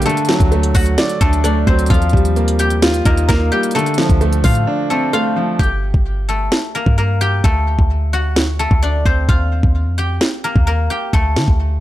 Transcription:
Already playing: A#3 F4 G4 A#4 G5
0.02 D3 A4, closed hi-hat
0.06 A3, closed hi-hat
0.17 closed hi-hat
0.25 F#3, snare, closed hi-hat
0.33 closed hi-hat
0.40 D2, kick, closed hi-hat
0.52 A3, closed hi-hat
0.63 closed hi-hat
0.75 D2 F#4 F#5, kick, open hi-hat
0.86 closed hi-hat
0.98 D5, snare, closed hi-hat
1.09 closed hi-hat
1.21 D2 A3 D4 A4, kick, closed hi-hat
1.33 closed hi-hat
1.44 A3 D4 D5, closed hi-hat
1.67 D2 F#3 C4 C5, kick
1.79 closed hi-hat
1.86 D#2 F3 F4, kick, closed hi-hat
1.91 F5, closed hi-hat
2.02 closed hi-hat
2.09 D#2 G3, kick, closed hi-hat
2.17 closed hi-hat
2.25 closed hi-hat
2.36 A#3, closed hi-hat
2.48 closed hi-hat
2.59 G4 G5, closed hi-hat
2.70 closed hi-hat
2.82 F4, snare, closed hi-hat
2.94 closed hi-hat
3.05 D#2 A#3 D#4 A#4, kick, closed hi-hat
3.17 closed hi-hat
3.29 D#2 A#3 A#4, kick, snare, closed hi-hat
3.52 G3 G4 G5
3.63 closed hi-hat
3.71 D3 A4, closed hi-hat
3.76 A3, closed hi-hat
3.86 closed hi-hat
3.94 F3, snare, closed hi-hat
4.02 closed hi-hat
4.09 D2, kick, closed hi-hat
4.21 A3, closed hi-hat
4.33 closed hi-hat
4.44 A2 F4 F5, kick, open hi-hat
4.55 closed hi-hat
4.67 D4
4.90 A3 C4 A4
5.13 A3 F4 F5
5.36 F3
5.59 G1 G4 G5, kick
5.63 closed hi-hat
5.94 G1, kick
6.29 A3 A4
6.52 snare
6.75 A#3 A#4
6.86 G2, kick
6.98 A#3 A#4
7.21 G4 G5
7.44 D2 A3 A4, kick
7.79 D2, kick
8.13 F#4 F#5
8.36 snare
8.59 A3 A4
8.71 D2, kick
8.82 D4 D5
9.06 D2 C4 C5, kick
9.29 D#2 F4 F5, kick
9.63 D#2, kick
9.86 F2
9.98 G4 G5
10.21 snare
10.44 A#3 A#4
10.56 D#2, kick
10.67 A#3 A#4
10.90 G4 G5
11.13 D2 A3 A4, kick
11.36 D3, snare
11.48 D2, kick

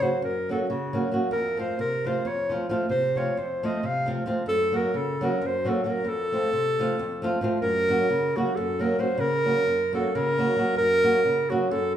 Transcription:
Already playing: C#3
0.01 F#3 A#3 C#4 F#4 C5
0.22 F#2 A#4
0.49 F#3 A#3 C#4 F#4 A4
0.70 C#3 F#4
0.93 F#3 A#3 C#4 F#4
1.11 F#3 A#3 C#4 F#4
1.31 F2 A#4
1.57 F3 A3 C4 F4 C5
1.79 C3 A#4
2.05 F3 A3 C4 F4 C5
2.25 F2 C#5
2.49 F3 A3 C4 F4
2.69 F3 A3 C4 F4
2.89 C3 C5
3.15 F3 A3 C4 F4 C#5
3.37 F2 C5
3.63 F3 A3 C4 F4 D#5
3.83 C3 F5
4.06 F3 A3 C4 F4
4.26 F3 A3 C4 F4
4.46 F#2 A4
4.72 F#3 A#3 C#4 F#4
4.76 A#4
4.94 C#3 A4
5.21 F#3 A#3 C#4 F#4 A#4
5.42 F#2
5.46 C5
5.65 F#3 A#3 C#4 F#4 A4
5.84 F#3 A#3 C#4 F#4
5.89 A#4
6.04 F2
6.09 A4
6.32 F3 A3 C4 F4
6.53 C3
6.79 F3 A3 C4 F4
6.99 F2
7.22 F3 A3 C4 F4
7.41 F3 A3 C4 F4
7.62 F#2 A#4
7.89 F#3 A#3 C#4 F#4
8.10 C#3
8.36 F#3 A#3 C#4 F#4
8.56 F#2 A4
8.79 F#3 A#3 C#4 F#4 A#4
8.99 F#3 A#3 C#4 F#4 C5
9.18 C#3 A#4
9.45 F#3 A#3 C#4 F#4
9.66 F#2
9.93 F#3 A#3 C#4 F#4 A4
10.15 C#3 A#4
10.38 F#3 A#3 C#4 F#4
10.56 F#3 A#3 C#4 F#4
10.76 F#2 A#4
11.03 F#3 A#3 C#4 F#4
11.25 C#3
11.50 F#3 A#3 C#4 F#4
11.71 F#2 A4

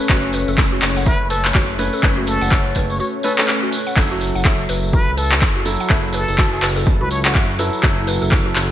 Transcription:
Already playing: A3 C#4
0.09 F#1 A3 C#4 F#4 B4 C#5, kick, clap, tambourine
0.33 B4, open hi-hat, tambourine
0.48 F#1 A4, tambourine
0.58 kick, clap, tambourine
0.72 F#4
0.82 F#1, clap, open hi-hat, tambourine
0.96 F#5, tambourine
1.05 B4 E5, kick, tambourine
1.20 F#1
1.30 A4 B4, open hi-hat, tambourine
1.44 clap, tambourine
1.54 F#1 F#4, kick, clap, tambourine
1.79 A3 C#4 B4, open hi-hat, tambourine
1.93 A4, tambourine
2.03 F#1 A3 C#4 B4, kick, clap, tambourine
2.17 F#4
2.27 A4, open hi-hat, tambourine
2.41 F#1 F#5, tambourine
2.51 E5, kick, clap, tambourine
2.75 F#1 B4, kick, open hi-hat, tambourine
2.90 C#5, tambourine
2.99 F#4 C#5, tambourine
3.23 A3 C#4 A4 B4, open hi-hat, tambourine
3.38 A3 C#4 A4 B4, clap, tambourine
3.48 clap, tambourine
3.63 F#4
3.72 open hi-hat, tambourine
3.87 F#5, tambourine
3.96 F#1 F#3 E4 A4, kick, clap, tambourine, crash
4.11 F#4
4.21 open hi-hat, tambourine
4.35 F#1 F#5, tambourine
4.45 E5, kick, clap, tambourine
4.69 F#1 B4, open hi-hat, tambourine
4.83 tambourine
4.93 F#4 B4, kick, tambourine
5.08 C#2
5.17 A4 B4, open hi-hat, tambourine
5.32 A4, clap, tambourine
5.42 F#1, kick, clap, tambourine
5.56 F#4
5.65 F#3 E4 A4, open hi-hat, tambourine
5.80 F#5, tambourine
5.89 F#1 F#3 E4 A4 E5, kick, clap, tambourine
6.13 A4 B4, open hi-hat, tambourine
6.28 F#1, tambourine
6.38 F#4, kick, clap, tambourine
6.53 A4
6.62 F#1 B4, clap, open hi-hat, tambourine
6.76 A4, tambourine
6.86 kick, tambourine
7.01 C#2 F#4 B4
7.11 C#5, open hi-hat, tambourine
7.25 C#5 F#5, clap, tambourine
7.35 F#1 E5, kick, clap, tambourine
7.59 F#3 E4 A4 B4, open hi-hat, tambourine
7.73 tambourine
7.83 F#1 F#3 E4 F#4 A4, kick, clap, tambourine
8.07 B4, open hi-hat, tambourine
8.22 F#1 A4, tambourine
8.31 kick, clap, tambourine
8.46 F#4
8.56 F#1, clap, open hi-hat, tambourine

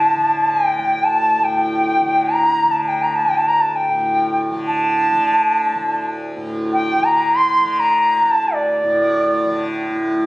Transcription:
Already playing: D2 A2 D3 A5
0.15 D3
0.50 G5
0.78 D2
1.04 A5
1.38 A2
1.44 G5
2.01 D3
2.34 A#5
2.64 D3
2.71 A5
2.88 G5
3.03 A#5
3.15 A5
3.26 D2 G5
3.37 A5
3.48 A#5
3.61 A5
3.76 G5
3.88 A2
4.51 D3
4.67 A5
5.12 D3
5.75 D2
6.37 A2
6.73 G5
6.98 D3
7.04 A#5
7.36 C6
7.60 D3
7.80 A#5
8.21 D2
8.26 A#5
8.31 A5
8.54 D5
8.84 A2
9.45 D3
9.90 A2

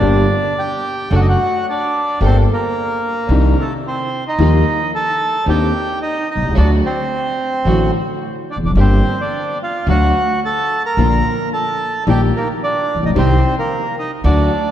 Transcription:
Already playing: D4 D5
0.00 G1 G2 D3 G3 A#3 D4 G4
0.58 G4 G5
1.11 F#1 F#2 F#3 A3 D4 F#4 A4
1.15 F#4 F#5
1.21 D#5
1.28 F#4 F#5
1.69 D4 D5
2.20 G1 G2 G3 A#3 D4 G4 A4
2.25 C4 C5
2.53 A#3 A#4
3.29 C2 C3 D#3 C4 D4 D#4 G4
3.60 A3 A4
3.87 C4 C5
4.28 D#4 D#5
4.38 D#2 D#3 F3 G3 A#3 D#4 F4 G4
4.95 A4 A5
5.46 D#2 D#3 C4 D4 D#4 G4 G5
6.02 D#4 D#5
6.31 D#4 D#5
6.36 B1
6.42 C2
6.48 C#2
6.55 D2 D3 F#3 A3 D4 F#4 D5
6.85 C4 C5
7.65 A1 A2 D3 F#3 A3 D4 F#4
8.50 D4 D5
8.56 E1 E2
8.64 F1 F2 D4 D5
8.70 F#1 F#2
8.75 G1 G2 D3 G3 A#3 D4 G4
8.79 C4 C5
9.20 D4 D5
9.63 F4 F5
9.87 D2 D3 F#3 A3 D4 F#4 F#5
10.45 A4 A5
10.86 A#4 A#5
10.97 A#1 A#2 D3 F3 A#3 D4 F4
11.53 A4 A5
12.07 A#1 A#2 D#3 G3 A#3 D#4 G4 G5
12.36 A#3 A#4
12.63 D4 D5
12.95 A1
13.02 A#1 D#4 D#5
13.09 B1
13.15 C2 C3 D#3 G3 C4 D#4 G4 C5
13.59 A#3 A#4
13.99 D#4 D#5
14.24 D2 D3 F#3 A3 D4 F#4 D5

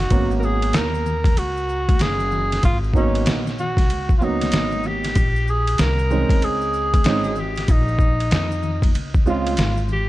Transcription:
Already playing: F#4
0.00 snare
0.10 G#1 F#3 A#3 B3 C#4, kick, ride, maracas
0.31 maracas
0.40 A#4, maracas
0.44 G#4
0.62 ride, maracas
0.73 D#2 A#4, snare, hi-hat pedal, ride, maracas
0.94 maracas
1.06 low conga, maracas
1.24 kick, ride, high conga, maracas
1.37 C#2 F#4, ride, maracas
1.57 maracas
1.69 maracas
1.89 kick, ride, high conga, maracas
1.99 F#1 G#4, snare, hi-hat pedal, ride, maracas
2.20 maracas
2.32 low conga, maracas
2.52 snare, ride, maracas
2.63 G#1 F4, kick, ride, maracas
2.84 maracas
2.94 F#3 A#3 B3 C#4 D#4, kick, high conga, maracas
3.15 ride, maracas
3.26 A#1, snare, hi-hat pedal, ride, maracas
3.47 snare, maracas
3.59 F#4, low conga, maracas
3.77 kick, snare, ride, high conga, maracas
3.89 C#2, ride, maracas
4.09 kick, maracas
4.18 F#3 A#3 B3 C#4 F4, high conga, maracas
4.24 D#4
4.41 snare, ride, high conga, maracas
4.52 G#1, snare, hi-hat pedal, ride, maracas
4.72 high conga, maracas
4.83 G4, low conga, maracas
5.04 snare, ride, maracas
5.15 A#1, kick, ride, maracas
5.36 maracas
5.48 G#4, maracas
5.67 ride, maracas
5.78 C2 A#4, snare, hi-hat pedal, ride, maracas
5.99 maracas
6.10 G#3 C4 C#4 D#4, low conga, maracas
6.29 kick, ride, high conga, maracas
6.42 C#2 G#4, ride, maracas
6.61 maracas
6.73 maracas
6.94 kick, ride, high conga, maracas
7.04 G#1 G#3 C4 C#4 D#4, snare, hi-hat pedal, ride, maracas
7.24 maracas
7.36 low conga, maracas
7.40 G4
7.56 snare, ride, maracas
7.68 A#1 D#4, kick, ride, maracas
7.88 maracas
7.99 kick, maracas
8.20 ride, maracas
8.31 F2, snare, hi-hat pedal, ride, maracas
8.51 maracas
8.63 low conga, maracas
8.82 kick, ride, high conga, maracas
8.94 C#2, ride, maracas
9.14 kick, maracas
9.26 G#3 C4 C#4 F4, maracas
9.46 ride, high conga, maracas
9.57 G#1, snare, hi-hat pedal, ride, maracas
9.77 maracas
9.89 G4, low conga, maracas

